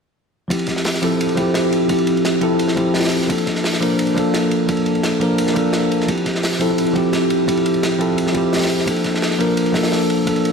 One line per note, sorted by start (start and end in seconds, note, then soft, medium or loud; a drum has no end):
0.48 0.99 F3 medium
0.48 1.00 C4 medium
0.48 1.01 E4 medium
0.48 kick loud
0.48 ride medium
0.53 1.02 G4 medium
0.59 ride soft
0.67 kick medium
0.67 snare soft
0.67 ride medium
0.76 snare soft
0.85 snare loud
0.85 open hi-hat medium
0.94 snare soft
1.02 1.15 F3 medium
1.02 1.15 C4 medium
1.02 1.15 E4 medium
1.02 1.16 A4 medium
1.02 ride medium
1.21 ride medium
1.29 ride soft
1.35 1.87 F3 medium
1.35 1.87 C4 medium
1.35 1.88 E4 medium
1.35 kick medium
1.35 ride medium
1.40 1.89 G4 medium
1.54 snare loud
1.54 ride medium
1.73 ride medium
1.88 2.39 F3 medium
1.88 2.40 C4 medium
1.88 2.41 E4 medium
1.88 kick loud
1.88 ride medium
1.92 2.41 G4 medium
1.98 ride soft
2.07 ride medium
2.17 ride soft
2.25 snare loud
2.25 ride medium
2.41 2.54 F3 medium
2.41 2.54 C4 medium
2.41 2.55 E4 medium
2.41 2.55 A4 medium
2.41 ride medium
2.59 ride medium
2.68 snare medium
2.75 3.26 F3 medium
2.75 3.27 C4 medium
2.75 3.28 E4 medium
2.75 kick loud
2.75 ride medium
2.80 3.29 G4 medium
2.94 snare medium
2.94 open hi-hat medium
2.99 snare medium
2.99 open hi-hat medium
3.03 snare medium
3.03 open hi-hat medium
3.07 snare medium
3.07 open hi-hat medium
3.12 ride medium
3.21 snare soft
3.27 3.79 F3 medium
3.27 3.79 A#3 medium
3.27 3.80 D4 medium
3.27 kick loud
3.27 ride medium
3.32 3.81 A4 medium
3.38 ride soft
3.47 kick medium
3.47 snare soft
3.47 ride medium
3.55 snare soft
3.64 snare loud
3.64 open hi-hat medium
3.73 snare medium
3.81 3.94 F3 medium
3.81 3.94 A#3 medium
3.81 3.94 D4 medium
3.81 3.95 A#4 loud
3.81 ride medium
3.99 ride medium
4.07 ride soft
4.14 4.66 F3 medium
4.14 4.67 A#3 medium
4.14 4.67 D4 medium
4.14 kick loud
4.14 ride medium
4.19 4.68 A4 medium
4.34 snare loud
4.34 ride medium
4.51 ride medium
4.67 5.18 F3 medium
4.67 5.19 A#3 medium
4.67 5.20 D4 medium
4.67 kick loud
4.67 ride medium
4.71 5.20 A4 medium
4.77 ride soft
4.86 ride medium
4.95 ride soft
5.03 snare loud
5.03 ride medium
5.20 5.33 F3 medium
5.20 5.33 A#3 medium
5.20 5.34 D4 medium
5.20 5.34 A#4 medium
5.20 ride medium
5.38 ride medium
5.47 snare medium
5.54 6.05 F3 medium
5.54 6.06 A#3 medium
5.54 6.07 D4 medium
5.54 kick loud
5.54 ride medium
5.58 6.07 A4 medium
5.73 snare loud
5.73 ride medium
5.92 ride medium
6.00 snare soft
6.06 6.57 F3 medium
6.06 6.58 C4 medium
6.06 6.59 E4 medium
6.06 kick loud
6.06 ride medium
6.11 6.60 G4 medium
6.17 ride soft
6.26 kick medium
6.26 snare soft
6.26 ride medium
6.35 snare soft
6.43 snare loud
6.43 open hi-hat medium
6.52 snare medium
6.59 6.73 F3 medium
6.59 6.73 C4 medium
6.59 6.73 E4 medium
6.59 6.74 A4 medium
6.59 ride medium
6.78 ride medium
6.86 ride soft
6.93 7.44 F3 medium
6.93 7.45 C4 medium
6.93 7.46 E4 medium
6.93 kick loud
6.93 ride medium
6.98 7.47 G4 medium
7.13 snare loud
7.13 ride medium
7.30 ride medium
7.46 7.97 F3 medium
7.46 7.98 C4 medium
7.46 7.99 E4 medium
7.46 kick loud
7.46 ride medium
7.50 7.99 G4 medium
7.57 ride soft
7.66 ride medium
7.74 ride soft
7.83 snare loud
7.83 ride medium
7.99 8.12 F3 medium
7.99 8.12 C4 medium
7.99 8.13 E4 medium
7.99 8.13 A4 medium
7.99 ride medium
8.18 ride medium
8.27 snare medium
8.33 8.84 F3 medium
8.33 8.85 C4 medium
8.33 8.86 E4 medium
8.33 kick medium
8.33 ride medium
8.37 8.87 G4 medium
8.53 snare medium
8.53 open hi-hat medium
8.57 snare medium
8.57 open hi-hat medium
8.61 snare medium
8.61 open hi-hat medium
8.65 snare medium
8.65 open hi-hat medium
8.70 ride medium
8.79 snare soft
8.85 9.36 F3 medium
8.85 9.37 A#3 medium
8.85 9.38 D4 medium
8.85 kick loud
8.85 ride medium
8.90 9.39 A4 medium
8.96 ride soft
9.04 kick medium
9.04 snare soft
9.04 ride medium
9.14 snare soft
9.22 snare loud
9.22 open hi-hat medium
9.30 snare soft
9.38 9.52 F3 medium
9.38 9.52 A#3 medium
9.38 9.52 D4 medium
9.38 9.53 A#4 medium
9.38 ride medium
9.57 ride medium
9.66 ride soft
9.72 10.24 F3 medium
9.72 10.24 A#3 medium
9.72 10.25 D4 medium
9.72 kick medium
9.72 snare loud
9.72 open hi-hat medium
9.77 10.26 A4 medium
9.83 snare medium
9.83 open hi-hat medium
9.92 snare loud
9.92 open hi-hat medium
10.10 ride medium
10.25 10.52 F3 medium
10.25 10.52 A#3 medium
10.25 10.52 D4 medium
10.25 kick loud
10.25 ride medium
10.30 10.52 A4 medium
10.36 ride soft
10.45 ride medium